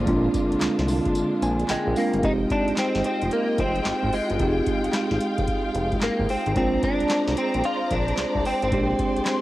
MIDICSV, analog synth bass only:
0, 0, Header, 1, 2, 480
1, 0, Start_track
1, 0, Tempo, 540541
1, 62, Time_signature, 4, 2, 24, 8
1, 8360, End_track
2, 0, Start_track
2, 0, Title_t, "Analog synth bass"
2, 0, Program_c, 0, 38
2, 63, Note_on_c, 0, 34, 110
2, 256, Note_off_c, 0, 34, 0
2, 459, Note_on_c, 0, 36, 51
2, 493, Note_off_c, 0, 36, 0
2, 544, Note_on_c, 0, 36, 47
2, 606, Note_off_c, 0, 36, 0
2, 698, Note_on_c, 0, 36, 77
2, 891, Note_off_c, 0, 36, 0
2, 1263, Note_on_c, 0, 34, 98
2, 1456, Note_off_c, 0, 34, 0
2, 1506, Note_on_c, 0, 34, 52
2, 1567, Note_off_c, 0, 34, 0
2, 1661, Note_on_c, 0, 34, 108
2, 1728, Note_off_c, 0, 34, 0
2, 1899, Note_on_c, 0, 31, 90
2, 1967, Note_off_c, 0, 31, 0
2, 1983, Note_on_c, 0, 29, 96
2, 2176, Note_off_c, 0, 29, 0
2, 2381, Note_on_c, 0, 32, 47
2, 2414, Note_off_c, 0, 32, 0
2, 2620, Note_on_c, 0, 32, 90
2, 2687, Note_off_c, 0, 32, 0
2, 2862, Note_on_c, 0, 29, 84
2, 2929, Note_off_c, 0, 29, 0
2, 3183, Note_on_c, 0, 29, 92
2, 3376, Note_off_c, 0, 29, 0
2, 3425, Note_on_c, 0, 32, 54
2, 3487, Note_off_c, 0, 32, 0
2, 3575, Note_on_c, 0, 32, 101
2, 3644, Note_off_c, 0, 32, 0
2, 3820, Note_on_c, 0, 31, 86
2, 3887, Note_off_c, 0, 31, 0
2, 3902, Note_on_c, 0, 29, 105
2, 4096, Note_off_c, 0, 29, 0
2, 4300, Note_on_c, 0, 32, 47
2, 4333, Note_off_c, 0, 32, 0
2, 4538, Note_on_c, 0, 32, 80
2, 4606, Note_off_c, 0, 32, 0
2, 4779, Note_on_c, 0, 29, 84
2, 4847, Note_off_c, 0, 29, 0
2, 5104, Note_on_c, 0, 29, 101
2, 5297, Note_off_c, 0, 29, 0
2, 5346, Note_on_c, 0, 32, 52
2, 5407, Note_off_c, 0, 32, 0
2, 5496, Note_on_c, 0, 32, 91
2, 5565, Note_off_c, 0, 32, 0
2, 5742, Note_on_c, 0, 32, 92
2, 5808, Note_off_c, 0, 32, 0
2, 5825, Note_on_c, 0, 34, 103
2, 6017, Note_off_c, 0, 34, 0
2, 6222, Note_on_c, 0, 36, 51
2, 6255, Note_off_c, 0, 36, 0
2, 6461, Note_on_c, 0, 36, 87
2, 6528, Note_off_c, 0, 36, 0
2, 6702, Note_on_c, 0, 34, 95
2, 6769, Note_off_c, 0, 34, 0
2, 7024, Note_on_c, 0, 34, 100
2, 7217, Note_off_c, 0, 34, 0
2, 7265, Note_on_c, 0, 36, 53
2, 7327, Note_off_c, 0, 36, 0
2, 7416, Note_on_c, 0, 36, 95
2, 7485, Note_off_c, 0, 36, 0
2, 7660, Note_on_c, 0, 32, 83
2, 7744, Note_on_c, 0, 34, 103
2, 7757, Note_off_c, 0, 32, 0
2, 7937, Note_off_c, 0, 34, 0
2, 8140, Note_on_c, 0, 36, 46
2, 8173, Note_off_c, 0, 36, 0
2, 8360, End_track
0, 0, End_of_file